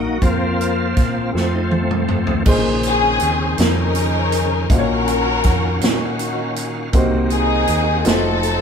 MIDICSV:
0, 0, Header, 1, 7, 480
1, 0, Start_track
1, 0, Key_signature, -5, "minor"
1, 0, Tempo, 746269
1, 142, Time_signature, 6, 3, 24, 8
1, 5540, End_track
2, 0, Start_track
2, 0, Title_t, "Upright piano"
2, 0, Program_c, 0, 0
2, 0, Control_c, 0, 64, 127
2, 0, Note_on_c, 0, 63, 56
2, 0, Note_on_c, 0, 66, 50
2, 0, Note_on_c, 0, 70, 62
2, 109, Note_off_c, 0, 63, 0
2, 115, Note_off_c, 0, 66, 0
2, 118, Note_off_c, 0, 70, 0
2, 139, Note_on_c, 0, 60, 56
2, 142, Note_on_c, 0, 65, 53
2, 145, Note_on_c, 0, 70, 61
2, 151, Control_c, 0, 64, 0
2, 253, Control_c, 0, 64, 127
2, 844, Note_off_c, 0, 60, 0
2, 849, Note_off_c, 0, 65, 0
2, 854, Note_on_c, 0, 60, 54
2, 859, Note_on_c, 0, 65, 51
2, 863, Note_on_c, 0, 69, 60
2, 866, Note_off_c, 0, 70, 0
2, 871, Control_c, 0, 64, 0
2, 965, Control_c, 0, 64, 127
2, 1578, Note_on_c, 0, 58, 83
2, 1581, Note_off_c, 0, 60, 0
2, 1581, Note_on_c, 0, 49, 69
2, 1583, Note_off_c, 0, 65, 0
2, 1585, Note_off_c, 0, 69, 0
2, 1585, Note_on_c, 0, 63, 70
2, 1587, Note_on_c, 0, 46, 69
2, 1591, Note_on_c, 0, 68, 66
2, 1594, Control_c, 0, 64, 0
2, 1596, Note_on_c, 0, 72, 85
2, 1689, Control_c, 0, 64, 127
2, 2281, Note_off_c, 0, 46, 0
2, 2997, Note_off_c, 0, 58, 0
2, 2998, Note_off_c, 0, 49, 0
2, 3000, Note_off_c, 0, 63, 0
2, 3003, Note_off_c, 0, 68, 0
2, 3006, Note_off_c, 0, 72, 0
2, 3022, Note_on_c, 0, 58, 67
2, 3024, Note_on_c, 0, 63, 57
2, 3029, Note_on_c, 0, 77, 59
2, 3032, Note_on_c, 0, 46, 64
2, 3035, Note_on_c, 0, 66, 60
2, 3036, Control_c, 0, 64, 0
2, 3038, Note_on_c, 0, 72, 56
2, 3074, Note_off_c, 0, 72, 0
2, 3077, Note_on_c, 0, 73, 77
2, 3151, Control_c, 0, 64, 127
2, 3722, Note_off_c, 0, 46, 0
2, 4436, Note_off_c, 0, 58, 0
2, 4437, Note_off_c, 0, 63, 0
2, 4439, Note_off_c, 0, 77, 0
2, 4442, Note_off_c, 0, 66, 0
2, 4461, Note_on_c, 0, 58, 83
2, 4464, Note_off_c, 0, 73, 0
2, 4464, Note_on_c, 0, 63, 75
2, 4465, Note_on_c, 0, 60, 72
2, 4466, Note_on_c, 0, 48, 77
2, 4468, Note_on_c, 0, 66, 75
2, 4470, Note_on_c, 0, 72, 89
2, 4473, Control_c, 0, 64, 0
2, 4589, Control_c, 0, 64, 127
2, 5157, Note_off_c, 0, 48, 0
2, 5166, Note_off_c, 0, 63, 0
2, 5171, Note_off_c, 0, 66, 0
2, 5174, Note_on_c, 0, 57, 72
2, 5175, Note_off_c, 0, 72, 0
2, 5176, Note_on_c, 0, 63, 65
2, 5176, Note_on_c, 0, 65, 63
2, 5180, Note_off_c, 0, 58, 0
2, 5181, Note_on_c, 0, 66, 68
2, 5182, Note_off_c, 0, 60, 0
2, 5184, Note_on_c, 0, 72, 77
2, 5191, Control_c, 0, 64, 0
2, 5312, Control_c, 0, 64, 127
2, 5540, Note_off_c, 0, 57, 0
2, 5540, Note_off_c, 0, 63, 0
2, 5540, Note_off_c, 0, 65, 0
2, 5540, Note_off_c, 0, 66, 0
2, 5540, Note_off_c, 0, 72, 0
2, 5540, End_track
3, 0, Start_track
3, 0, Title_t, "String section"
3, 0, Program_c, 1, 48
3, 1842, Note_on_c, 1, 61, 77
3, 1845, Note_on_c, 1, 60, 76
3, 1851, Note_on_c, 1, 68, 112
3, 2293, Note_off_c, 1, 68, 0
3, 2305, Note_off_c, 1, 61, 0
3, 2313, Note_on_c, 1, 61, 76
3, 2313, Note_on_c, 1, 63, 77
3, 2323, Note_on_c, 1, 70, 94
3, 2530, Note_off_c, 1, 60, 0
3, 3004, Note_off_c, 1, 61, 0
3, 3004, Note_off_c, 1, 63, 0
3, 3009, Note_off_c, 1, 70, 0
3, 3040, Note_on_c, 1, 61, 73
3, 3044, Note_on_c, 1, 66, 76
3, 3044, Note_on_c, 1, 70, 110
3, 3726, Note_off_c, 1, 61, 0
3, 3729, Note_off_c, 1, 66, 0
3, 3729, Note_off_c, 1, 70, 0
3, 3756, Note_on_c, 1, 66, 71
3, 3760, Note_on_c, 1, 63, 56
3, 3761, Note_on_c, 1, 61, 58
3, 4290, Note_off_c, 1, 66, 0
3, 4445, Note_off_c, 1, 63, 0
3, 4446, Note_off_c, 1, 61, 0
3, 4696, Note_on_c, 1, 68, 108
3, 4704, Note_on_c, 1, 63, 79
3, 5152, Note_off_c, 1, 68, 0
3, 5156, Note_off_c, 1, 63, 0
3, 5188, Note_on_c, 1, 63, 71
3, 5190, Note_on_c, 1, 69, 110
3, 5191, Note_on_c, 1, 60, 68
3, 5540, Note_off_c, 1, 60, 0
3, 5540, Note_off_c, 1, 63, 0
3, 5540, Note_off_c, 1, 69, 0
3, 5540, End_track
4, 0, Start_track
4, 0, Title_t, "Tonewheel organ"
4, 0, Program_c, 2, 16
4, 0, Note_on_c, 2, 58, 53
4, 0, Note_on_c, 2, 63, 58
4, 0, Note_on_c, 2, 66, 74
4, 116, Note_off_c, 2, 58, 0
4, 116, Note_off_c, 2, 63, 0
4, 140, Note_on_c, 2, 53, 47
4, 142, Note_on_c, 2, 58, 47
4, 144, Note_on_c, 2, 60, 47
4, 155, Note_on_c, 2, 65, 62
4, 164, Note_off_c, 2, 66, 0
4, 838, Note_off_c, 2, 53, 0
4, 843, Note_off_c, 2, 58, 0
4, 846, Note_off_c, 2, 60, 0
4, 849, Note_off_c, 2, 65, 0
4, 868, Note_on_c, 2, 53, 47
4, 869, Note_on_c, 2, 57, 42
4, 869, Note_on_c, 2, 60, 47
4, 880, Note_on_c, 2, 66, 57
4, 933, Note_off_c, 2, 66, 0
4, 945, Note_on_c, 2, 65, 50
4, 992, Note_on_c, 2, 63, 54
4, 995, Note_off_c, 2, 65, 0
4, 1048, Note_off_c, 2, 63, 0
4, 1055, Note_on_c, 2, 65, 52
4, 1109, Note_off_c, 2, 65, 0
4, 1562, Note_off_c, 2, 53, 0
4, 1562, Note_off_c, 2, 57, 0
4, 1563, Note_off_c, 2, 60, 0
4, 1590, Note_on_c, 2, 49, 61
4, 1590, Note_on_c, 2, 72, 69
4, 1595, Note_on_c, 2, 68, 82
4, 1597, Note_on_c, 2, 51, 76
4, 3003, Note_off_c, 2, 49, 0
4, 3003, Note_off_c, 2, 72, 0
4, 3005, Note_off_c, 2, 68, 0
4, 3007, Note_off_c, 2, 51, 0
4, 3023, Note_on_c, 2, 61, 57
4, 3023, Note_on_c, 2, 66, 56
4, 3023, Note_on_c, 2, 77, 75
4, 3024, Note_on_c, 2, 51, 62
4, 4436, Note_off_c, 2, 61, 0
4, 4437, Note_off_c, 2, 51, 0
4, 4437, Note_off_c, 2, 66, 0
4, 4437, Note_off_c, 2, 77, 0
4, 4451, Note_on_c, 2, 58, 70
4, 4453, Note_on_c, 2, 60, 74
4, 4455, Note_on_c, 2, 51, 70
4, 4456, Note_on_c, 2, 66, 82
4, 5174, Note_on_c, 2, 53, 67
4, 5175, Note_off_c, 2, 58, 0
4, 5176, Note_off_c, 2, 60, 0
4, 5176, Note_on_c, 2, 63, 58
4, 5177, Note_off_c, 2, 51, 0
4, 5178, Note_off_c, 2, 66, 0
4, 5178, Note_on_c, 2, 54, 74
4, 5178, Note_on_c, 2, 57, 61
4, 5540, Note_off_c, 2, 53, 0
4, 5540, Note_off_c, 2, 54, 0
4, 5540, Note_off_c, 2, 57, 0
4, 5540, Note_off_c, 2, 63, 0
4, 5540, End_track
5, 0, Start_track
5, 0, Title_t, "French horn section"
5, 0, Program_c, 3, 60
5, 0, Note_on_c, 3, 54, 64
5, 0, Note_on_c, 3, 58, 58
5, 0, Note_on_c, 3, 63, 54
5, 0, Note_on_c, 3, 66, 66
5, 113, Note_off_c, 3, 58, 0
5, 114, Note_off_c, 3, 66, 0
5, 127, Note_off_c, 3, 63, 0
5, 128, Note_off_c, 3, 54, 0
5, 144, Note_on_c, 3, 53, 66
5, 144, Note_on_c, 3, 65, 66
5, 145, Note_on_c, 3, 58, 56
5, 148, Note_on_c, 3, 60, 55
5, 853, Note_off_c, 3, 60, 0
5, 854, Note_on_c, 3, 57, 51
5, 858, Note_off_c, 3, 58, 0
5, 861, Note_on_c, 3, 60, 48
5, 1572, Note_off_c, 3, 53, 0
5, 1572, Note_off_c, 3, 65, 0
5, 1574, Note_off_c, 3, 57, 0
5, 1577, Note_off_c, 3, 60, 0
5, 5540, End_track
6, 0, Start_track
6, 0, Title_t, "Fingered electric bass"
6, 0, Program_c, 4, 33
6, 0, Note_on_c, 4, 34, 77
6, 116, Note_off_c, 4, 34, 0
6, 138, Note_on_c, 4, 41, 88
6, 596, Note_off_c, 4, 41, 0
6, 623, Note_on_c, 4, 46, 82
6, 844, Note_off_c, 4, 46, 0
6, 863, Note_on_c, 4, 41, 77
6, 1560, Note_off_c, 4, 41, 0
6, 1582, Note_on_c, 4, 34, 96
6, 2039, Note_off_c, 4, 34, 0
6, 2065, Note_on_c, 4, 39, 83
6, 2286, Note_off_c, 4, 39, 0
6, 2306, Note_on_c, 4, 41, 93
6, 3001, Note_off_c, 4, 41, 0
6, 3022, Note_on_c, 4, 34, 92
6, 3478, Note_off_c, 4, 34, 0
6, 3502, Note_on_c, 4, 41, 81
6, 3725, Note_off_c, 4, 41, 0
6, 3744, Note_on_c, 4, 46, 85
6, 4437, Note_off_c, 4, 46, 0
6, 4459, Note_on_c, 4, 36, 102
6, 4914, Note_off_c, 4, 36, 0
6, 4943, Note_on_c, 4, 39, 90
6, 5163, Note_off_c, 4, 39, 0
6, 5180, Note_on_c, 4, 29, 98
6, 5540, Note_off_c, 4, 29, 0
6, 5540, End_track
7, 0, Start_track
7, 0, Title_t, "Drums"
7, 139, Note_on_c, 9, 42, 65
7, 141, Note_on_c, 9, 36, 84
7, 204, Note_off_c, 9, 42, 0
7, 205, Note_off_c, 9, 36, 0
7, 390, Note_on_c, 9, 42, 40
7, 455, Note_off_c, 9, 42, 0
7, 622, Note_on_c, 9, 42, 55
7, 624, Note_on_c, 9, 36, 84
7, 635, Note_on_c, 9, 38, 25
7, 686, Note_off_c, 9, 42, 0
7, 688, Note_off_c, 9, 36, 0
7, 699, Note_off_c, 9, 38, 0
7, 879, Note_on_c, 9, 38, 45
7, 943, Note_off_c, 9, 38, 0
7, 1102, Note_on_c, 9, 48, 65
7, 1167, Note_off_c, 9, 48, 0
7, 1228, Note_on_c, 9, 47, 61
7, 1292, Note_off_c, 9, 47, 0
7, 1341, Note_on_c, 9, 45, 72
7, 1406, Note_off_c, 9, 45, 0
7, 1459, Note_on_c, 9, 43, 64
7, 1524, Note_off_c, 9, 43, 0
7, 1580, Note_on_c, 9, 49, 97
7, 1583, Note_on_c, 9, 36, 102
7, 1644, Note_off_c, 9, 49, 0
7, 1647, Note_off_c, 9, 36, 0
7, 1821, Note_on_c, 9, 42, 50
7, 1886, Note_off_c, 9, 42, 0
7, 2056, Note_on_c, 9, 42, 60
7, 2120, Note_off_c, 9, 42, 0
7, 2302, Note_on_c, 9, 42, 76
7, 2319, Note_on_c, 9, 38, 105
7, 2366, Note_off_c, 9, 42, 0
7, 2383, Note_off_c, 9, 38, 0
7, 2539, Note_on_c, 9, 42, 60
7, 2603, Note_off_c, 9, 42, 0
7, 2779, Note_on_c, 9, 42, 75
7, 2844, Note_off_c, 9, 42, 0
7, 3021, Note_on_c, 9, 42, 82
7, 3022, Note_on_c, 9, 36, 98
7, 3086, Note_off_c, 9, 42, 0
7, 3087, Note_off_c, 9, 36, 0
7, 3265, Note_on_c, 9, 42, 54
7, 3330, Note_off_c, 9, 42, 0
7, 3497, Note_on_c, 9, 42, 67
7, 3504, Note_on_c, 9, 36, 85
7, 3510, Note_on_c, 9, 38, 32
7, 3561, Note_off_c, 9, 42, 0
7, 3568, Note_off_c, 9, 36, 0
7, 3574, Note_off_c, 9, 38, 0
7, 3739, Note_on_c, 9, 42, 75
7, 3756, Note_on_c, 9, 38, 103
7, 3804, Note_off_c, 9, 42, 0
7, 3821, Note_off_c, 9, 38, 0
7, 3982, Note_on_c, 9, 42, 58
7, 4047, Note_off_c, 9, 42, 0
7, 4221, Note_on_c, 9, 42, 68
7, 4286, Note_off_c, 9, 42, 0
7, 4458, Note_on_c, 9, 42, 78
7, 4461, Note_on_c, 9, 36, 95
7, 4522, Note_off_c, 9, 42, 0
7, 4525, Note_off_c, 9, 36, 0
7, 4697, Note_on_c, 9, 42, 46
7, 4761, Note_off_c, 9, 42, 0
7, 4937, Note_on_c, 9, 42, 65
7, 5001, Note_off_c, 9, 42, 0
7, 5176, Note_on_c, 9, 42, 77
7, 5193, Note_on_c, 9, 38, 98
7, 5240, Note_off_c, 9, 42, 0
7, 5257, Note_off_c, 9, 38, 0
7, 5422, Note_on_c, 9, 42, 61
7, 5486, Note_off_c, 9, 42, 0
7, 5540, End_track
0, 0, End_of_file